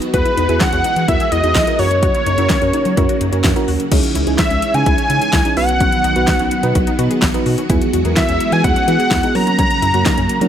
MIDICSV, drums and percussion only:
0, 0, Header, 1, 2, 480
1, 0, Start_track
1, 0, Tempo, 472441
1, 140, Time_signature, 4, 2, 24, 8
1, 10650, End_track
2, 0, Start_track
2, 0, Title_t, "Drums"
2, 19, Note_on_c, 9, 42, 56
2, 120, Note_off_c, 9, 42, 0
2, 139, Note_on_c, 9, 36, 115
2, 139, Note_on_c, 9, 42, 82
2, 240, Note_off_c, 9, 42, 0
2, 241, Note_off_c, 9, 36, 0
2, 259, Note_on_c, 9, 42, 53
2, 361, Note_off_c, 9, 42, 0
2, 381, Note_on_c, 9, 42, 75
2, 482, Note_off_c, 9, 42, 0
2, 498, Note_on_c, 9, 42, 51
2, 600, Note_off_c, 9, 42, 0
2, 615, Note_on_c, 9, 42, 73
2, 617, Note_on_c, 9, 38, 117
2, 617, Note_on_c, 9, 39, 94
2, 621, Note_on_c, 9, 36, 119
2, 717, Note_off_c, 9, 42, 0
2, 719, Note_off_c, 9, 38, 0
2, 719, Note_off_c, 9, 39, 0
2, 723, Note_off_c, 9, 36, 0
2, 737, Note_on_c, 9, 42, 51
2, 839, Note_off_c, 9, 42, 0
2, 857, Note_on_c, 9, 42, 88
2, 959, Note_off_c, 9, 42, 0
2, 979, Note_on_c, 9, 42, 59
2, 1080, Note_off_c, 9, 42, 0
2, 1101, Note_on_c, 9, 42, 80
2, 1102, Note_on_c, 9, 36, 112
2, 1203, Note_off_c, 9, 42, 0
2, 1204, Note_off_c, 9, 36, 0
2, 1221, Note_on_c, 9, 42, 62
2, 1323, Note_off_c, 9, 42, 0
2, 1340, Note_on_c, 9, 42, 77
2, 1442, Note_off_c, 9, 42, 0
2, 1459, Note_on_c, 9, 42, 59
2, 1561, Note_off_c, 9, 42, 0
2, 1577, Note_on_c, 9, 38, 116
2, 1577, Note_on_c, 9, 39, 96
2, 1579, Note_on_c, 9, 36, 107
2, 1580, Note_on_c, 9, 42, 73
2, 1679, Note_off_c, 9, 38, 0
2, 1679, Note_off_c, 9, 39, 0
2, 1680, Note_off_c, 9, 36, 0
2, 1682, Note_off_c, 9, 42, 0
2, 1699, Note_on_c, 9, 42, 54
2, 1801, Note_off_c, 9, 42, 0
2, 1817, Note_on_c, 9, 46, 72
2, 1919, Note_off_c, 9, 46, 0
2, 1940, Note_on_c, 9, 42, 58
2, 2041, Note_off_c, 9, 42, 0
2, 2059, Note_on_c, 9, 42, 79
2, 2060, Note_on_c, 9, 36, 112
2, 2161, Note_off_c, 9, 36, 0
2, 2161, Note_off_c, 9, 42, 0
2, 2180, Note_on_c, 9, 42, 54
2, 2281, Note_off_c, 9, 42, 0
2, 2301, Note_on_c, 9, 42, 72
2, 2402, Note_off_c, 9, 42, 0
2, 2417, Note_on_c, 9, 42, 53
2, 2518, Note_off_c, 9, 42, 0
2, 2536, Note_on_c, 9, 42, 75
2, 2538, Note_on_c, 9, 38, 117
2, 2538, Note_on_c, 9, 39, 96
2, 2542, Note_on_c, 9, 36, 117
2, 2637, Note_off_c, 9, 42, 0
2, 2639, Note_off_c, 9, 38, 0
2, 2639, Note_off_c, 9, 39, 0
2, 2643, Note_off_c, 9, 36, 0
2, 2658, Note_on_c, 9, 42, 51
2, 2760, Note_off_c, 9, 42, 0
2, 2778, Note_on_c, 9, 42, 89
2, 2880, Note_off_c, 9, 42, 0
2, 2898, Note_on_c, 9, 42, 58
2, 3000, Note_off_c, 9, 42, 0
2, 3021, Note_on_c, 9, 42, 82
2, 3023, Note_on_c, 9, 36, 117
2, 3122, Note_off_c, 9, 42, 0
2, 3124, Note_off_c, 9, 36, 0
2, 3141, Note_on_c, 9, 42, 60
2, 3243, Note_off_c, 9, 42, 0
2, 3260, Note_on_c, 9, 42, 79
2, 3362, Note_off_c, 9, 42, 0
2, 3379, Note_on_c, 9, 42, 60
2, 3481, Note_off_c, 9, 42, 0
2, 3497, Note_on_c, 9, 38, 119
2, 3497, Note_on_c, 9, 39, 95
2, 3499, Note_on_c, 9, 36, 112
2, 3500, Note_on_c, 9, 42, 69
2, 3599, Note_off_c, 9, 38, 0
2, 3599, Note_off_c, 9, 39, 0
2, 3600, Note_off_c, 9, 36, 0
2, 3602, Note_off_c, 9, 42, 0
2, 3619, Note_on_c, 9, 42, 53
2, 3721, Note_off_c, 9, 42, 0
2, 3738, Note_on_c, 9, 46, 71
2, 3840, Note_off_c, 9, 46, 0
2, 3859, Note_on_c, 9, 42, 58
2, 3960, Note_off_c, 9, 42, 0
2, 3978, Note_on_c, 9, 42, 83
2, 3978, Note_on_c, 9, 49, 99
2, 3979, Note_on_c, 9, 36, 116
2, 4080, Note_off_c, 9, 42, 0
2, 4080, Note_off_c, 9, 49, 0
2, 4081, Note_off_c, 9, 36, 0
2, 4098, Note_on_c, 9, 42, 53
2, 4200, Note_off_c, 9, 42, 0
2, 4220, Note_on_c, 9, 42, 73
2, 4321, Note_off_c, 9, 42, 0
2, 4336, Note_on_c, 9, 42, 54
2, 4438, Note_off_c, 9, 42, 0
2, 4455, Note_on_c, 9, 42, 74
2, 4457, Note_on_c, 9, 38, 117
2, 4457, Note_on_c, 9, 39, 94
2, 4461, Note_on_c, 9, 36, 121
2, 4557, Note_off_c, 9, 42, 0
2, 4559, Note_off_c, 9, 38, 0
2, 4559, Note_off_c, 9, 39, 0
2, 4563, Note_off_c, 9, 36, 0
2, 4577, Note_on_c, 9, 42, 53
2, 4679, Note_off_c, 9, 42, 0
2, 4697, Note_on_c, 9, 42, 84
2, 4799, Note_off_c, 9, 42, 0
2, 4819, Note_on_c, 9, 42, 59
2, 4920, Note_off_c, 9, 42, 0
2, 4940, Note_on_c, 9, 42, 84
2, 4942, Note_on_c, 9, 36, 117
2, 5042, Note_off_c, 9, 42, 0
2, 5044, Note_off_c, 9, 36, 0
2, 5062, Note_on_c, 9, 42, 63
2, 5163, Note_off_c, 9, 42, 0
2, 5179, Note_on_c, 9, 42, 78
2, 5281, Note_off_c, 9, 42, 0
2, 5299, Note_on_c, 9, 42, 58
2, 5401, Note_off_c, 9, 42, 0
2, 5417, Note_on_c, 9, 38, 119
2, 5417, Note_on_c, 9, 39, 96
2, 5418, Note_on_c, 9, 36, 116
2, 5420, Note_on_c, 9, 42, 72
2, 5519, Note_off_c, 9, 38, 0
2, 5519, Note_off_c, 9, 39, 0
2, 5520, Note_off_c, 9, 36, 0
2, 5522, Note_off_c, 9, 42, 0
2, 5538, Note_on_c, 9, 42, 53
2, 5640, Note_off_c, 9, 42, 0
2, 5656, Note_on_c, 9, 46, 73
2, 5758, Note_off_c, 9, 46, 0
2, 5778, Note_on_c, 9, 42, 58
2, 5880, Note_off_c, 9, 42, 0
2, 5897, Note_on_c, 9, 42, 82
2, 5899, Note_on_c, 9, 36, 117
2, 5999, Note_off_c, 9, 42, 0
2, 6000, Note_off_c, 9, 36, 0
2, 6019, Note_on_c, 9, 42, 53
2, 6120, Note_off_c, 9, 42, 0
2, 6139, Note_on_c, 9, 42, 75
2, 6241, Note_off_c, 9, 42, 0
2, 6257, Note_on_c, 9, 42, 53
2, 6358, Note_off_c, 9, 42, 0
2, 6375, Note_on_c, 9, 42, 75
2, 6377, Note_on_c, 9, 38, 116
2, 6377, Note_on_c, 9, 39, 92
2, 6381, Note_on_c, 9, 36, 120
2, 6477, Note_off_c, 9, 42, 0
2, 6479, Note_off_c, 9, 38, 0
2, 6479, Note_off_c, 9, 39, 0
2, 6482, Note_off_c, 9, 36, 0
2, 6496, Note_on_c, 9, 42, 50
2, 6598, Note_off_c, 9, 42, 0
2, 6617, Note_on_c, 9, 42, 83
2, 6718, Note_off_c, 9, 42, 0
2, 6738, Note_on_c, 9, 42, 61
2, 6840, Note_off_c, 9, 42, 0
2, 6860, Note_on_c, 9, 42, 85
2, 6862, Note_on_c, 9, 36, 119
2, 6962, Note_off_c, 9, 42, 0
2, 6964, Note_off_c, 9, 36, 0
2, 6981, Note_on_c, 9, 42, 61
2, 7083, Note_off_c, 9, 42, 0
2, 7100, Note_on_c, 9, 42, 79
2, 7201, Note_off_c, 9, 42, 0
2, 7221, Note_on_c, 9, 42, 61
2, 7322, Note_off_c, 9, 42, 0
2, 7338, Note_on_c, 9, 38, 121
2, 7338, Note_on_c, 9, 39, 95
2, 7339, Note_on_c, 9, 36, 113
2, 7341, Note_on_c, 9, 42, 72
2, 7440, Note_off_c, 9, 36, 0
2, 7440, Note_off_c, 9, 38, 0
2, 7440, Note_off_c, 9, 39, 0
2, 7443, Note_off_c, 9, 42, 0
2, 7460, Note_on_c, 9, 42, 56
2, 7562, Note_off_c, 9, 42, 0
2, 7579, Note_on_c, 9, 46, 71
2, 7680, Note_off_c, 9, 46, 0
2, 7700, Note_on_c, 9, 42, 60
2, 7802, Note_off_c, 9, 42, 0
2, 7819, Note_on_c, 9, 42, 82
2, 7820, Note_on_c, 9, 36, 118
2, 7921, Note_off_c, 9, 42, 0
2, 7922, Note_off_c, 9, 36, 0
2, 7940, Note_on_c, 9, 42, 52
2, 8042, Note_off_c, 9, 42, 0
2, 8061, Note_on_c, 9, 42, 75
2, 8163, Note_off_c, 9, 42, 0
2, 8178, Note_on_c, 9, 42, 53
2, 8280, Note_off_c, 9, 42, 0
2, 8296, Note_on_c, 9, 42, 77
2, 8298, Note_on_c, 9, 38, 113
2, 8298, Note_on_c, 9, 39, 100
2, 8302, Note_on_c, 9, 36, 118
2, 8398, Note_off_c, 9, 42, 0
2, 8400, Note_off_c, 9, 38, 0
2, 8400, Note_off_c, 9, 39, 0
2, 8403, Note_off_c, 9, 36, 0
2, 8418, Note_on_c, 9, 42, 53
2, 8520, Note_off_c, 9, 42, 0
2, 8539, Note_on_c, 9, 42, 84
2, 8641, Note_off_c, 9, 42, 0
2, 8659, Note_on_c, 9, 42, 59
2, 8760, Note_off_c, 9, 42, 0
2, 8781, Note_on_c, 9, 42, 83
2, 8783, Note_on_c, 9, 36, 119
2, 8883, Note_off_c, 9, 42, 0
2, 8884, Note_off_c, 9, 36, 0
2, 8902, Note_on_c, 9, 42, 60
2, 9003, Note_off_c, 9, 42, 0
2, 9021, Note_on_c, 9, 42, 78
2, 9123, Note_off_c, 9, 42, 0
2, 9141, Note_on_c, 9, 42, 61
2, 9243, Note_off_c, 9, 42, 0
2, 9259, Note_on_c, 9, 36, 112
2, 9259, Note_on_c, 9, 38, 118
2, 9259, Note_on_c, 9, 39, 98
2, 9262, Note_on_c, 9, 42, 72
2, 9361, Note_off_c, 9, 36, 0
2, 9361, Note_off_c, 9, 38, 0
2, 9361, Note_off_c, 9, 39, 0
2, 9364, Note_off_c, 9, 42, 0
2, 9380, Note_on_c, 9, 42, 54
2, 9482, Note_off_c, 9, 42, 0
2, 9500, Note_on_c, 9, 46, 74
2, 9602, Note_off_c, 9, 46, 0
2, 9621, Note_on_c, 9, 42, 58
2, 9723, Note_off_c, 9, 42, 0
2, 9740, Note_on_c, 9, 36, 112
2, 9740, Note_on_c, 9, 42, 82
2, 9841, Note_off_c, 9, 42, 0
2, 9842, Note_off_c, 9, 36, 0
2, 9861, Note_on_c, 9, 42, 53
2, 9963, Note_off_c, 9, 42, 0
2, 9981, Note_on_c, 9, 42, 72
2, 10083, Note_off_c, 9, 42, 0
2, 10099, Note_on_c, 9, 42, 52
2, 10200, Note_off_c, 9, 42, 0
2, 10218, Note_on_c, 9, 42, 73
2, 10220, Note_on_c, 9, 38, 118
2, 10220, Note_on_c, 9, 39, 95
2, 10222, Note_on_c, 9, 36, 121
2, 10319, Note_off_c, 9, 42, 0
2, 10321, Note_off_c, 9, 38, 0
2, 10321, Note_off_c, 9, 39, 0
2, 10324, Note_off_c, 9, 36, 0
2, 10339, Note_on_c, 9, 42, 51
2, 10441, Note_off_c, 9, 42, 0
2, 10458, Note_on_c, 9, 42, 88
2, 10560, Note_off_c, 9, 42, 0
2, 10580, Note_on_c, 9, 42, 60
2, 10650, Note_off_c, 9, 42, 0
2, 10650, End_track
0, 0, End_of_file